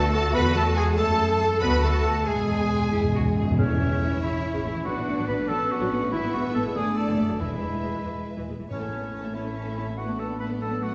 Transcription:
Already playing: double bass section D2, french horn section A3, cello section F#4, viola section A4, clarinet A4, violin section A4 A5, oboe A4, flute A5
0.12 french horn section A3, viola section A4, oboe A4, violin section A4 A5, clarinet A4, flute A5
0.33 double bass section E2, french horn section B3, oboe B4, viola section B4, violin section B4 B5, clarinet B4, flute B5
0.54 french horn section A3, viola section A4, violin section A4 A5, oboe A4, clarinet A4, flute A5
0.75 french horn section G#3, violin section G#4 G#5, viola section G#4, oboe G#4, clarinet G#4, flute G#5
0.96 double bass section F#2, french horn section A3, viola section A4, cello section A4, oboe A4, clarinet A4, violin section A4 A5, flute A5
1.38 french horn section A3, viola section A4, violin section A4 A5, oboe A4, clarinet A4, flute A5
1.60 double bass section D2, french horn section B3, cello section F#4, viola section B4, clarinet B4, violin section B4 B5, oboe B4, flute B5
1.82 french horn section A3, viola section A4, violin section A4 A5, oboe A4, clarinet A4, flute A5
2.26 double bass section E2, timpani E2, french horn section G#3, viola section G#4, clarinet G#4, cello section G#4, violin section G#4 G#5, oboe G#4, flute G#5
2.35 timpani E2
2.43 timpani E2
2.51 timpani E2
2.59 timpani E2
2.66 timpani E2
2.73 timpani E2
2.81 timpani E2
2.88 timpani E2, double bass section E2
2.92 timpani E2, cello section E4
3.04 timpani E2
3.12 timpani E2, cello section F#4
3.20 timpani E2
3.27 timpani E2
3.35 timpani E2, cello section G#4
3.42 timpani E2
3.51 timpani E2
3.58 double bass section A1, timpani A2, viola section C#3, french horn section E3 C#4, clarinet C#4, cello section E4, violin section C#5 E5, flute C#5
3.69 double bass section A1, viola section A3
3.80 double bass section A1, viola section E3
3.91 double bass section A1, viola section C#3
4.01 double bass section A1, viola section A3
4.11 double bass section A1, viola section E3
4.22 double bass section A1, viola section C#3, french horn section E3 C#4, clarinet E4, flute E5
4.54 double bass section A1, viola section C#3
4.63 double bass section A1, viola section A3, clarinet E4, flute E5
4.74 double bass section A1, viola section E3
4.84 double bass section A1, viola section F#3, french horn section B3 D4, cello section D4, clarinet F#4, violin section B4 D5, flute F#5
4.96 double bass section A1, viola section B3
5.07 double bass section A1, viola section A3
5.17 double bass section A1, viola section F#3
5.27 double bass section A1, viola section B3, clarinet B4, flute B5
5.38 double bass section A1, viola section A3
5.48 double bass section A1, viola section F#3, french horn section B3 D4, cello section C#4, clarinet A4, flute A5
5.71 clarinet F#4, flute F#5
5.81 double bass section A1, viola section F#3
5.91 double bass section A1, viola section B3
6.02 double bass section A1, viola section A3
6.12 double bass section G#1, viola section E3, cello section B3, french horn section B3 E4, clarinet E4, violin section E5, flute E5
6.23 double bass section G#1, viola section B3
6.33 double bass section G#1, viola section G#3, clarinet F#4, flute F#5
6.44 double bass section G#1, viola section E3
6.54 double bass section G#1, viola section B3, clarinet A4, flute A5
6.65 double bass section G#1, viola section G#3
6.75 double bass section F#1, viola section D3, cello section A3, french horn section A3 D4, clarinet G#4, violin section D5, flute G#5
6.97 clarinet A4, flute A5
7.08 double bass section F#1, viola section D3
7.18 double bass section F#1, viola section A3
7.29 double bass section F#1, viola section F#3
7.39 double bass section E1, timpani E2, viola section E3, cello section G#3, french horn section G#3 E4, clarinet E4, violin section B4 E5, flute E5
7.50 double bass section E1, viola section G#3
7.62 double bass section E1, viola section E3
7.73 double bass section E1, viola section E3
7.83 double bass section E1, viola section G#3
7.95 double bass section E1, viola section E3
8.05 double bass section E1, viola section E3
8.38 double bass section E1, viola section E3
8.49 double bass section E1, viola section G#3
8.60 double bass section E1, viola section E3
8.70 double bass section A1, timpani A2, cello section A3, french horn section A3 E4, viola section C#4, clarinet C#4, violin section C#5 A5, flute C#5
8.81 viola section A3, violin section A4 E5
8.90 cello section B3, viola section C#4, violin section C#5 A5
9.02 viola section A3, violin section A4 E5
9.12 cello section C#4, viola section C#4, violin section C#5 A5
9.23 viola section A3, violin section A4 E5
9.33 french horn section A3 E4, cello section C#4, viola section C#4, clarinet E4, violin section C#5 A5, flute E5
9.45 viola section A3, violin section A4 E5
9.55 viola section C#4, violin section C#5 A5
9.65 viola section A3, violin section A4 E5
9.76 viola section C#4, clarinet E4, violin section C#5 A5, flute E5
9.86 viola section A3, violin section A4 E5
9.97 cello section A3, viola section A3, french horn section B3 D4, clarinet F#4, violin section B4 F#5, flute F#5
10.08 viola section B3, violin section A4 D5
10.18 viola section A3, clarinet A4, violin section B4 F#5, flute A5
10.29 viola section B3, violin section A4 D5
10.38 viola section A3, violin section B4 F#5, clarinet B4, flute B5
10.50 viola section B3, violin section A4 D5
10.60 cello section F#3, viola section A3, french horn section B3 D4, clarinet A4, violin section B4 F#5, flute A5
10.71 viola section B3, violin section A4 D5
10.82 viola section A3, clarinet F#4, violin section B4 F#5, flute F#5

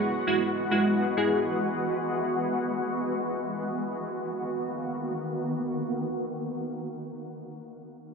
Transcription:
Already playing: ambient pad E3 G#3 B3 F#4
0.27 synth keys G#3 E4 F#4
0.71 synth keys G#3 E4 F#4
1.17 synth keys G#3 E4 G#4
4.01 ambient pad D#3 A#3 B3 F#4

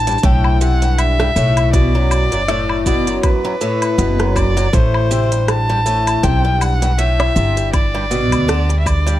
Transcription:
Already playing: upright bass A1, violin A5
0.07 twelve-string acoustic guitar G2, closed hi-hat, shaker
0.11 shaker
0.18 shaker
0.23 upright bass B1, twelve-string acoustic guitar A2, violin G5, kick, closed hi-hat, shaker
0.44 low woodblock
0.61 twelve-string acoustic guitar C3, violin F#5, shaker
0.82 twelve-string acoustic guitar G2, closed hi-hat, shaker
0.98 violin E5, closed hi-hat, low woodblock, shaker
1.20 twelve-string acoustic guitar G2, cross-stick
1.36 upright bass B1, twelve-string acoustic guitar A2, shaker
1.57 closed hi-hat, low woodblock, shaker
1.73 twelve-string acoustic guitar B2, violin D5, kick, closed hi-hat, shaker
1.95 twelve-string acoustic guitar F#2
2.11 low woodblock, shaker
2.32 upright bass F#1, twelve-string acoustic guitar F#2, closed hi-hat, shaker
2.48 twelve-string acoustic guitar A2, cross-stick, closed hi-hat, shaker
2.69 low woodblock
2.86 twelve-string acoustic guitar B2, violin D5, kick, shaker
3.07 twelve-string acoustic guitar F#2, closed hi-hat, shaker
3.23 violin B4, kick, closed hi-hat, low woodblock, shaker
3.45 twelve-string acoustic guitar F#2
3.61 twelve-string acoustic guitar A2, shaker
3.82 closed hi-hat, low woodblock, shaker
3.98 upright bass F#1, twelve-string acoustic guitar B2, closed hi-hat, shaker
4.19 twelve-string acoustic guitar F#2, cross-stick, closed hi-hat
4.36 violin D5, kick, low woodblock, shaker
4.57 twelve-string acoustic guitar F#2, closed hi-hat, shaker
4.73 upright bass A1, twelve-string acoustic guitar A2, violin C5, kick, closed hi-hat, shaker
4.94 low woodblock
5.11 twelve-string acoustic guitar C3, shaker
5.32 twelve-string acoustic guitar G2, closed hi-hat, shaker
5.48 violin A5, cross-stick, closed hi-hat, low woodblock, shaker
5.69 twelve-string acoustic guitar G2
5.86 twelve-string acoustic guitar A2, shaker
6.07 closed hi-hat, low woodblock, shaker
6.23 upright bass B1, twelve-string acoustic guitar C3, violin G5, kick, closed hi-hat, shaker
6.45 twelve-string acoustic guitar G2
6.61 violin F#5, low woodblock, shaker
6.82 twelve-string acoustic guitar G2, closed hi-hat, shaker
6.98 twelve-string acoustic guitar A2, violin E5, closed hi-hat, shaker
7.20 cross-stick, closed hi-hat, low woodblock
7.36 upright bass G1, twelve-string acoustic guitar C3, shaker
7.57 twelve-string acoustic guitar G2, closed hi-hat, shaker
7.74 violin D5, kick, closed hi-hat, low woodblock, shaker
7.94 twelve-string acoustic guitar G2
8.11 twelve-string acoustic guitar B2, shaker
8.32 upright bass D2, closed hi-hat, low woodblock, shaker
8.48 twelve-string acoustic guitar D3, cross-stick, closed hi-hat, shaker
8.69 twelve-string acoustic guitar G2, closed hi-hat
8.80 violin E5
8.86 violin D5, kick, low woodblock, shaker
9.06 twelve-string acoustic guitar G2, closed hi-hat, shaker

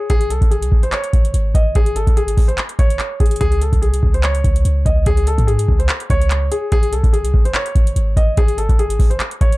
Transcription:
0.10 808-style bass G#1, grand piano G#4, kick, closed hi-hat
0.21 closed hi-hat
0.30 808-style bass C2, grand piano A4, closed hi-hat
0.42 808-style bass G#1, kick, closed hi-hat
0.51 grand piano G#4, closed hi-hat
0.62 808-style bass C2, closed hi-hat
0.72 808-style bass G#1, kick
0.83 grand piano C5, closed hi-hat
0.92 grand piano C#5, clap, closed hi-hat
1.04 closed hi-hat
1.13 808-style bass G#1, kick, closed hi-hat
1.25 closed hi-hat
1.34 808-style bass G#1, closed hi-hat
1.55 808-style bass G#1, grand piano D#5, kick, closed hi-hat
1.75 808-style bass G#1, grand piano G#4, kick, closed hi-hat
1.86 closed hi-hat
1.96 grand piano A4, closed hi-hat
2.07 808-style bass G#1, kick, closed hi-hat
2.17 grand piano G#4, closed hi-hat
2.28 closed hi-hat
2.37 808-style bass G#1, kick, open hi-hat
2.48 grand piano C5, closed hi-hat
2.58 clap, closed hi-hat
2.69 closed hi-hat
2.79 808-style bass G#1, grand piano C#5, kick, closed hi-hat
2.90 closed hi-hat
2.99 clap, closed hi-hat
3.20 808-style bass G#1, grand piano G#4, kick, closed hi-hat
3.26 closed hi-hat
3.31 closed hi-hat
3.36 closed hi-hat
3.41 808-style bass C#2, grand piano G#4, kick, closed hi-hat
3.52 closed hi-hat
3.61 grand piano A4, closed hi-hat
3.73 808-style bass C2, kick, closed hi-hat
3.82 grand piano G#4, closed hi-hat
3.94 closed hi-hat
4.03 808-style bass C#2, kick
4.14 grand piano C5, closed hi-hat
4.23 grand piano C#5, clap, closed hi-hat
4.35 closed hi-hat
4.44 808-style bass C#2, kick, closed hi-hat
4.56 closed hi-hat
4.65 808-style bass C#2, closed hi-hat
4.86 808-style bass C#2, grand piano D#5, kick, closed hi-hat
5.06 808-style bass C#2, grand piano G#4, kick, closed hi-hat
5.17 closed hi-hat
5.27 grand piano A4, closed hi-hat
5.38 808-style bass G#2, kick, closed hi-hat
5.47 grand piano G#4, closed hi-hat
5.59 closed hi-hat
5.68 808-style bass C#2, kick
5.79 grand piano C5, closed hi-hat
5.89 clap, closed hi-hat
6.00 closed hi-hat
6.10 808-style bass C#2, grand piano C#5, kick, closed hi-hat
6.22 closed hi-hat
6.31 clap, closed hi-hat
6.52 grand piano G#4, closed hi-hat
6.72 808-style bass G#1, grand piano G#4, kick, closed hi-hat
6.83 closed hi-hat
6.92 808-style bass C2, grand piano A4, closed hi-hat
7.04 808-style bass G#1, kick, closed hi-hat
7.13 grand piano G#4, closed hi-hat
7.24 808-style bass C2, closed hi-hat
7.34 808-style bass G#1, kick
7.45 grand piano C5, closed hi-hat
7.55 grand piano C#5, clap, closed hi-hat
7.66 closed hi-hat
7.75 808-style bass G#1, kick, closed hi-hat
7.87 closed hi-hat
7.96 808-style bass G#1, closed hi-hat
8.17 808-style bass G#1, grand piano D#5, kick, closed hi-hat
8.37 808-style bass G#1, grand piano G#4, kick, closed hi-hat
8.48 closed hi-hat
8.58 grand piano A4, closed hi-hat
8.69 808-style bass G#1, kick, closed hi-hat
8.79 grand piano G#4, closed hi-hat
8.90 closed hi-hat
8.99 808-style bass G#1, kick, open hi-hat
9.10 grand piano C5, closed hi-hat
9.20 clap, closed hi-hat
9.31 closed hi-hat
9.41 808-style bass G#1, grand piano C#5, kick, closed hi-hat
9.52 closed hi-hat

